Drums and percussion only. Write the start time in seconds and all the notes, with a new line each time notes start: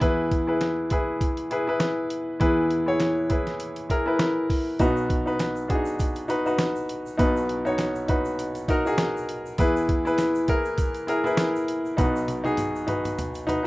0.01 kick, closed hi-hat
0.31 kick, closed hi-hat
0.61 snare, closed hi-hat
0.90 kick, closed hi-hat
1.21 kick, closed hi-hat
1.37 closed hi-hat
1.51 closed hi-hat
1.80 snare, closed hi-hat
2.10 closed hi-hat
2.41 kick, closed hi-hat
2.70 closed hi-hat
3.00 snare, closed hi-hat
3.30 kick, closed hi-hat
3.47 snare, closed hi-hat
3.60 closed hi-hat
3.76 closed hi-hat
3.90 kick, closed hi-hat
4.19 snare, closed hi-hat
4.50 kick, open hi-hat
4.79 kick, closed hi-hat, shaker
4.97 shaker
5.10 kick, closed hi-hat
5.27 shaker
5.39 snare, closed hi-hat, shaker
5.56 shaker
5.70 kick, closed hi-hat
5.85 shaker
5.99 kick, closed hi-hat, shaker
6.15 closed hi-hat, shaker
6.29 closed hi-hat, shaker
6.46 shaker
6.59 snare, closed hi-hat, shaker
6.76 shaker
6.89 closed hi-hat, shaker
7.06 shaker
7.19 kick, closed hi-hat, shaker
7.37 shaker
7.49 closed hi-hat
7.66 shaker
7.78 snare, closed hi-hat, shaker
7.95 shaker
8.08 kick, closed hi-hat
8.25 shaker
8.39 closed hi-hat, shaker
8.55 closed hi-hat, shaker
8.68 kick, closed hi-hat, shaker
8.87 shaker
8.98 snare, closed hi-hat, shaker
9.17 shaker
9.29 closed hi-hat, shaker
9.46 shaker
9.58 kick, closed hi-hat, shaker
9.77 shaker
9.89 kick, closed hi-hat
10.06 shaker
10.18 snare, closed hi-hat, shaker
10.35 shaker
10.48 kick, closed hi-hat
10.65 shaker
10.78 kick, closed hi-hat, shaker
10.94 closed hi-hat, shaker
11.08 closed hi-hat, shaker
11.26 shaker
11.37 snare, closed hi-hat, shaker
11.56 shaker
11.68 closed hi-hat, shaker
11.86 shaker
11.98 kick, closed hi-hat, high tom, shaker
12.16 shaker
12.28 closed hi-hat, high tom, shaker
12.45 high tom, shaker
12.57 closed hi-hat, mid tom, shaker
12.76 shaker
12.88 closed hi-hat, mid tom, shaker
13.05 closed hi-hat, mid tom, shaker
13.19 closed hi-hat, mid tom, shaker
13.35 closed hi-hat, shaker
13.48 closed hi-hat, mid tom, shaker